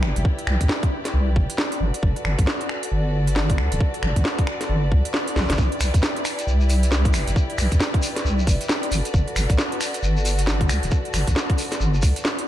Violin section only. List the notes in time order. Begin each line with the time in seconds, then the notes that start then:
Already playing: E4 G4 B4 D5
1.81 F#4 A4 B4
5.58 E4 G4
8.92 F#4 A4